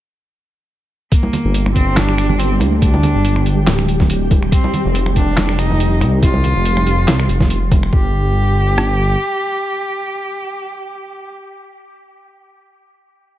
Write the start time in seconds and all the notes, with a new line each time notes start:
1.11 G3 A#3 G4, kick, closed hi-hat
1.23 high conga
1.33 closed hi-hat, low conga
1.45 G1
1.54 closed hi-hat
1.66 finger snap, high conga
1.75 G1 C4, kick, closed hi-hat
1.96 D4, snare, clap, closed hi-hat, high conga
2.09 finger snap
2.18 finger snap, closed hi-hat
2.29 high conga, low conga
2.38 C4, closed hi-hat
2.60 D2 A#3, finger snap, closed hi-hat, high conga
2.81 D4, kick, closed hi-hat
2.94 high conga
3.03 closed hi-hat, low conga
3.15 G1
3.25 closed hi-hat
3.36 finger snap, high conga
3.46 G1, closed hi-hat
3.67 D1, snare, clap, closed hi-hat, high conga
3.79 finger snap
3.88 closed hi-hat
4.00 kick, snare, high conga, low conga
4.10 closed hi-hat
4.31 kick, closed hi-hat, high conga
4.43 finger snap
4.52 C4, kick, closed hi-hat
4.64 high conga
4.74 closed hi-hat, low conga
4.85 F1
4.95 closed hi-hat
5.06 finger snap, high conga
5.16 F1 D4, kick, closed hi-hat
5.37 snare, clap, closed hi-hat, high conga
5.49 finger snap
5.59 D#4, finger snap, closed hi-hat
5.70 high conga, low conga
5.80 closed hi-hat
6.01 C2, finger snap, closed hi-hat, high conga
6.22 F4, kick, closed hi-hat
6.34 high conga
6.43 closed hi-hat, low conga
6.56 F1
6.65 closed hi-hat
6.77 finger snap, high conga
6.87 F1, closed hi-hat
7.08 C2, snare, clap, closed hi-hat, high conga
7.20 finger snap
7.29 F1, closed hi-hat
7.40 kick, snare, high conga, low conga
7.50 closed hi-hat
7.71 kick, closed hi-hat, high conga
7.83 finger snap
7.93 G1 G4, kick
8.78 cross-stick